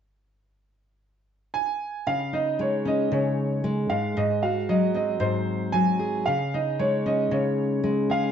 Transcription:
1.54 G#5
2.07 C#3 F5
2.33 D#4 D#5
2.59 G#3 C#5
2.85 C#4 D#5
3.12 C#3 C#5
3.64 G#3
3.90 G#2 F5
4.17 G#2 D#5
4.43 F#4 F5
4.69 F#3 D#5
4.94 C4 D#5
5.20 G#2 C5
5.72 F#3 G#5
5.99 G#4
6.26 C#3 F5
6.54 D#4 D#5
6.79 G#3 C#5
7.06 C#4 D#5
7.31 C#3 C#5
7.84 G#3
8.10 G#4 F5

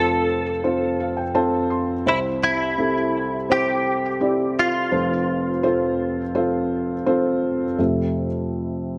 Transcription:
Already playing: F1 F2 C4 F4 A4 C5
0.64 C4 F4 A4 C5
1.00 F5
1.17 G5
1.35 C4 F4 A4 C5 A5
1.70 C6
2.06 C2 C3 C4 E4 G4 C5
2.43 E4
2.78 C4 E4 G4 A4
3.50 C4 E4 G4 C5
4.21 C4 E4 G4 D5
4.59 F4
4.92 F1 F2 C4 F4 A4 C5
5.63 C4 F4 A4 C5
6.35 C4 F4 A4 C5
7.06 C4 F4 A4 C5
7.78 F2 C3 A3

